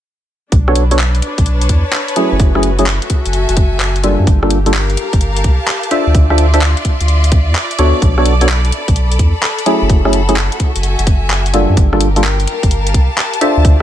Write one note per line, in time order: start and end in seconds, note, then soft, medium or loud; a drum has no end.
0.52 1.21 B1 loud
0.52 2.40 D4 medium
0.52 kick loud
0.52 closed hi-hat medium
0.68 0.83 B3 medium
0.68 0.83 D4 medium
0.68 0.83 F#4 medium
0.68 0.83 A4 medium
0.68 0.83 C#5 loud
0.68 cross-stick medium
0.75 3.16 B4 medium
0.75 closed hi-hat loud
0.91 0.99 B3 medium
0.91 0.99 D4 medium
0.91 0.99 F#4 medium
0.91 0.99 A4 medium
0.91 0.99 C#5 loud
0.91 closed hi-hat medium
0.99 clap loud
1.15 closed hi-hat soft
1.22 3.06 C#5 medium
1.22 closed hi-hat loud
1.32 2.40 A5 medium
1.38 1.68 B1 medium
1.38 kick loud
1.38 closed hi-hat medium
1.46 closed hi-hat medium
1.61 closed hi-hat medium
1.69 1.83 E2 medium
1.69 kick medium
1.69 closed hi-hat loud
1.93 clap loud
2.08 closed hi-hat soft
2.16 2.52 F#3 medium
2.16 2.52 A3 medium
2.16 2.52 C#4 medium
2.16 2.52 E4 medium
2.16 2.52 G#4 loud
2.16 closed hi-hat loud
2.32 3.00 F#1 loud
2.40 4.27 F#4 medium
2.40 kick loud
2.40 closed hi-hat medium
2.55 2.71 F#3 medium
2.55 2.71 A3 medium
2.55 2.71 C#4 medium
2.55 2.71 E4 medium
2.55 2.71 G#4 loud
2.55 cross-stick medium
2.63 closed hi-hat loud
2.79 2.86 F#3 medium
2.79 2.86 A3 medium
2.79 2.86 C#4 medium
2.79 2.86 E4 medium
2.79 2.86 G#4 loud
2.79 4.27 A4 medium
2.79 closed hi-hat medium
2.85 4.27 E5 medium
2.85 clap loud
3.02 closed hi-hat medium
3.10 kick medium
3.10 closed hi-hat loud
3.26 3.46 F#1 medium
3.26 4.27 G#5 medium
3.26 closed hi-hat medium
3.33 closed hi-hat medium
3.49 4.17 F#1 loud
3.49 closed hi-hat medium
3.57 kick loud
3.57 closed hi-hat loud
3.80 clap loud
3.96 closed hi-hat soft
4.04 4.39 G3 medium
4.04 4.39 A#3 medium
4.04 4.39 D4 medium
4.04 4.39 F4 medium
4.04 4.39 A4 loud
4.04 closed hi-hat loud
4.19 4.26 F#2 medium
4.27 4.96 G1 loud
4.27 6.79 G4 medium
4.27 kick loud
4.27 closed hi-hat medium
4.43 4.58 G3 medium
4.43 4.58 A#3 medium
4.43 4.58 D4 medium
4.43 4.58 F4 medium
4.43 4.58 A4 loud
4.43 cross-stick medium
4.50 closed hi-hat loud
4.66 4.73 G3 medium
4.66 4.73 A#3 medium
4.66 4.73 D4 medium
4.66 4.73 F4 medium
4.66 4.73 A4 loud
4.66 5.91 A#4 medium
4.66 closed hi-hat medium
4.74 clap loud
4.80 5.91 F5 medium
4.90 closed hi-hat soft
4.97 closed hi-hat loud
5.02 6.67 A5 medium
5.13 5.43 G1 medium
5.13 kick loud
5.13 closed hi-hat medium
5.21 closed hi-hat medium
5.36 closed hi-hat medium
5.44 5.58 C2 medium
5.44 kick medium
5.44 closed hi-hat loud
5.68 clap loud
5.83 closed hi-hat soft
5.91 6.27 D4 medium
5.91 6.27 F4 medium
5.91 8.02 F4 medium
5.91 6.27 A4 medium
5.91 6.27 C5 medium
5.91 6.27 E5 loud
5.91 closed hi-hat loud
5.97 9.90 D5 medium
6.07 6.75 D2 medium
6.13 8.79 E5 medium
6.13 kick loud
6.13 closed hi-hat medium
6.30 6.46 D4 medium
6.30 6.46 F4 medium
6.30 6.46 A4 medium
6.30 6.46 C5 medium
6.30 6.46 E5 loud
6.30 cross-stick medium
6.37 8.02 C6 medium
6.37 closed hi-hat loud
6.54 6.61 D4 medium
6.54 6.61 F4 medium
6.54 6.61 A4 medium
6.54 6.61 C5 medium
6.54 6.61 E5 loud
6.54 closed hi-hat medium
6.61 clap loud
6.77 closed hi-hat medium
6.85 kick medium
6.85 closed hi-hat loud
7.01 7.49 D2 medium
7.01 closed hi-hat medium
7.08 closed hi-hat medium
7.24 closed hi-hat medium
7.32 kick loud
7.32 closed hi-hat loud
7.48 7.55 F2 medium
7.55 clap loud
7.71 closed hi-hat soft
7.79 7.93 D2 loud
7.79 8.14 B3 medium
7.79 8.14 D4 medium
7.79 8.14 F#4 medium
7.79 8.14 A4 medium
7.79 8.14 C#5 loud
7.79 closed hi-hat loud
8.02 8.71 B1 loud
8.02 11.77 A4 medium
8.02 kick loud
8.02 closed hi-hat medium
8.18 8.33 B3 medium
8.18 8.33 D4 medium
8.18 8.33 F#4 medium
8.18 8.33 A4 medium
8.18 8.33 C#5 loud
8.18 cross-stick medium
8.26 closed hi-hat loud
8.41 8.49 B3 medium
8.41 8.49 D4 medium
8.41 8.49 F#4 medium
8.41 8.49 A4 medium
8.41 8.49 C#5 loud
8.41 10.66 B5 medium
8.41 closed hi-hat medium
8.49 clap loud
8.65 closed hi-hat soft
8.72 closed hi-hat medium
8.88 9.18 B1 medium
8.88 kick loud
8.88 closed hi-hat medium
8.96 closed hi-hat medium
9.12 closed hi-hat medium
9.19 9.33 E2 medium
9.19 kick medium
9.19 closed hi-hat loud
9.43 clap loud
9.59 closed hi-hat soft
9.66 10.02 F#3 medium
9.66 10.02 A3 medium
9.66 10.02 C#4 medium
9.66 10.02 E4 medium
9.66 10.02 G#4 loud
9.66 closed hi-hat loud
9.82 10.50 F#1 loud
9.89 11.77 F#4 medium
9.89 kick loud
9.89 closed hi-hat medium
10.05 10.21 F#3 medium
10.05 10.21 A3 medium
10.05 10.21 C#4 medium
10.05 10.21 E4 medium
10.05 10.21 G#4 loud
10.05 cross-stick medium
10.13 closed hi-hat loud
10.29 10.36 F#3 medium
10.29 10.36 A3 medium
10.29 10.36 C#4 medium
10.29 10.36 E4 medium
10.29 10.36 G#4 loud
10.29 closed hi-hat medium
10.36 clap loud
10.52 closed hi-hat medium
10.59 11.77 E5 medium
10.59 kick medium
10.59 closed hi-hat loud
10.76 10.96 F#1 medium
10.76 11.77 G#5 medium
10.76 closed hi-hat medium
10.83 closed hi-hat medium
10.99 11.67 F#1 medium
10.99 closed hi-hat medium
11.07 kick loud
11.07 closed hi-hat loud
11.30 clap loud
11.46 closed hi-hat soft
11.54 11.89 G3 medium
11.54 11.89 A#3 medium
11.54 11.89 D4 medium
11.54 11.89 F4 medium
11.54 11.89 A4 loud
11.54 closed hi-hat loud
11.69 11.76 F#2 medium
11.77 12.46 G1 loud
11.77 13.82 G4 medium
11.77 kick loud
11.77 closed hi-hat medium
11.93 12.08 G3 medium
11.93 12.08 A#3 medium
11.93 12.08 D4 medium
11.93 12.08 F4 medium
11.93 12.08 A4 loud
11.93 cross-stick medium
12.01 closed hi-hat loud
12.06 13.41 A#4 medium
12.16 12.24 G3 medium
12.16 12.24 A#3 medium
12.16 12.24 D4 medium
12.16 12.24 F4 medium
12.16 12.24 A4 loud
12.16 closed hi-hat medium
12.24 clap loud
12.40 closed hi-hat soft
12.46 13.41 F5 medium
12.46 13.82 A5 medium
12.46 closed hi-hat loud
12.63 12.93 G1 medium
12.63 kick medium
12.63 closed hi-hat medium
12.71 closed hi-hat medium
12.87 closed hi-hat medium
12.94 13.08 C2 medium
12.94 kick medium
12.94 closed hi-hat loud
13.18 clap loud
13.34 closed hi-hat medium
13.41 13.77 D4 loud
13.41 13.82 F4 medium
13.41 13.77 F4 medium
13.41 13.77 A4 medium
13.41 13.77 C5 medium
13.41 13.77 E5 loud
13.41 closed hi-hat loud
13.57 13.82 D2 loud
13.65 kick loud
13.65 closed hi-hat medium
13.70 13.82 D5 medium